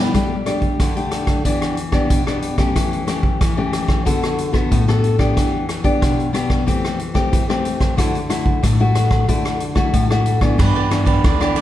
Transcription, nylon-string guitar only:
Already playing: B2
0.14 G3 A3 D4 G4
0.46 A3 D4 G4
0.80 D3
0.96 A3 D4 G4
1.45 E3 B3 D4 G4
1.92 B3 D4 G4
2.10 B2
2.27 B3 D4 G4
2.58 A3 C#4 G4
2.76 E3
3.07 A3 C#4 G4
3.41 E3
3.57 A3 C#4 G4
4.05 D3 B3 F#4 A4
4.53 B3 F#4 A4
4.71 A2
4.88 B3 F#4 A4
5.19 B3 D4 G4
5.36 E3
5.84 B3 D4 G4
6.01 B2
6.33 B3 D4 G4
6.66 E3 A3 C4 G4
7.14 A3 C4 G4
7.32 E3
7.49 A3 C4 G4
7.97 D3 A3 E4 F#4
8.29 A3 E4 F#4
8.63 A2
8.80 A3 E4 F#4
9.28 D3 A3 E4 F#4
9.76 A3 E4 F#4
9.93 A2
10.11 A3 E4 F#4
10.41 E3 B3 D4
10.59 G2
10.90 E3 B3 D4
11.24 D3
11.40 E3 B3 D4

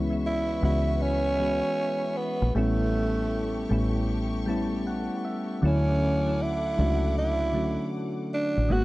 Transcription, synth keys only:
Already playing: E3 G#3 B3 C#4 E4 F#4
0.10 E3 G#3 B3 C#4 E4
0.61 E3 G#3 B3 C#4 F#4
1.38 E3 G#3 B3 C#4 F#4
2.55 G3 A3 B3 C#4 E4
3.69 G3 A3 B3 C#4 E4
4.46 G3 A3 B3 C#4 E4 A5
4.87 F#5
5.25 E5
5.62 D3 F#3 A3 C#4 E4
6.25 D3 F#3 A3 C#4 E4
6.77 F#3 A3 C#4 D4 F#4
7.53 D3 F#3 A3 C#4 F#4
8.69 D#3 G#3 A#3 B3 F#4

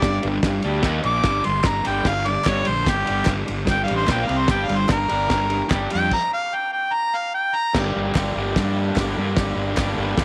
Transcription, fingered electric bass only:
0.03 G1
0.25 G1
0.43 G1
0.65 D2
0.83 D#2
1.04 A#1
1.25 G1
1.47 G1
1.65 G1
1.87 G1
2.05 G1
2.47 G1
2.68 A#1
2.87 G1
3.09 G1
3.26 G1
3.49 G1
3.68 G1
3.91 A1
4.09 A#1
4.29 C2
4.49 G1
4.69 G1
4.90 G1
5.11 G1
5.31 G1
5.71 G1
5.95 F2
7.75 G1
7.96 G1
8.15 G1
8.35 G1
8.56 G2
8.97 G1
9.17 G2
9.38 G1
9.56 G1
9.78 G1
9.98 G1
10.18 G1

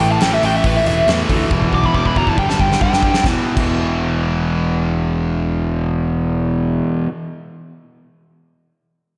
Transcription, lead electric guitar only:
0.00 G5
0.12 A5
0.22 G5
0.34 E5
0.45 G5
0.57 E5
0.66 B4
0.76 E5
0.87 E5
1.75 D6
1.86 B5
1.95 D6
2.07 B5
2.18 A#5
2.29 A5
2.39 G5
2.49 A5
2.60 G5
2.82 G5

